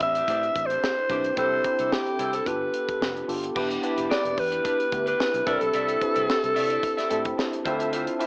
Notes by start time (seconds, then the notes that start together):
Already playing: C4 D4 E4 G4 B4
0.00 A1 E5, muted clean electric guitar stroke, kick, closed hi-hat
0.15 D4 G4 C5, closed hi-hat
0.28 A2 D4 G4 C5, kick, closed hi-hat
0.43 muted clean electric guitar stroke, closed hi-hat
0.56 A1, muted clean electric guitar stroke, kick, closed hi-hat
0.66 C5, closed hi-hat
0.70 D4 G4 C5
0.84 snare
0.98 muted clean electric guitar stroke
1.09 B1 C4 D4 E4 G4 B4 C5, kick, closed hi-hat
1.24 muted clean electric guitar stroke, closed hi-hat
1.37 C2 C4 D4 E4 G4 A4 C5, kick, closed hi-hat
1.64 C4 D4 E4 G4 A4, muted clean electric guitar stroke, kick, closed hi-hat
1.79 C2 E4 A4 C5, closed hi-hat
1.92 G4, muted clean electric guitar stroke, snare
2.06 muted clean electric guitar stroke, closed hi-hat
2.19 C2 E4 A4 C5, closed hi-hat
2.33 E4 A4 C5, closed hi-hat
2.46 G1 B3 D4 F4 G4 A4 B4, muted clean electric guitar stroke, kick, closed hi-hat
2.61 muted clean electric guitar stroke
2.74 closed hi-hat
2.88 muted clean electric guitar stroke, kick, closed hi-hat
3.01 F1, muted clean electric guitar stroke, snare
3.15 muted clean electric guitar stroke, closed hi-hat
3.28 G1 B3 D4 F4 G4 A4, open hi-hat
3.42 muted clean electric guitar stroke, closed hi-hat
3.55 E1 B3 D4 E4 G4 B4, kick, crash
3.70 muted clean electric guitar stroke, closed hi-hat
3.82 B3 D4 E4 G4 B4, closed hi-hat
3.97 E1 D4 G4 B4, closed hi-hat
4.09 D4 G4 B4 D5, snare
4.24 E1, muted clean electric guitar stroke, closed hi-hat
4.36 E2 B4, muted clean electric guitar stroke, kick, open hi-hat
4.51 D4 G4 B4, closed hi-hat
4.64 D4 G4 B4, kick, closed hi-hat
4.79 muted clean electric guitar stroke, closed hi-hat
4.91 D2 B3 D4 E4 G4 B4, muted clean electric guitar stroke, kick, closed hi-hat
5.06 D4 G4 B4, closed hi-hat
5.20 snare
5.34 B1, muted clean electric guitar stroke, closed hi-hat
5.46 C2 C4 D4 E4 G4 A4 D5 E5, kick, closed hi-hat
5.61 B1, muted clean electric guitar stroke, closed hi-hat
5.73 C2 A4 D5 E5, closed hi-hat
5.89 closed hi-hat
6.01 C4 D4 E4 G4 B4, muted clean electric guitar stroke, kick, closed hi-hat
6.15 C2 A4 D5 E5, closed hi-hat
6.28 muted clean electric guitar stroke, snare
6.43 C2, muted clean electric guitar stroke, closed hi-hat
6.55 C3 A4 D5 E5, open hi-hat
6.69 A4 D5 E5, closed hi-hat
6.82 muted clean electric guitar stroke, kick, closed hi-hat
6.97 A4 D5 E5, snare, closed hi-hat
7.09 A2 C4 D4 E4 G4 A4 D5 E5, closed hi-hat
7.24 muted clean electric guitar stroke, kick, closed hi-hat
7.37 muted clean electric guitar stroke, snare
7.52 muted clean electric guitar stroke, closed hi-hat
7.65 D2 C4 D4 E4 F4 A4 C5 E5, kick, closed hi-hat
7.79 F4 C5 E5, closed hi-hat
7.92 F4 C5 E5, closed hi-hat
8.07 muted clean electric guitar stroke, closed hi-hat
8.19 C4 D4 E4 F4 C5 E5, closed hi-hat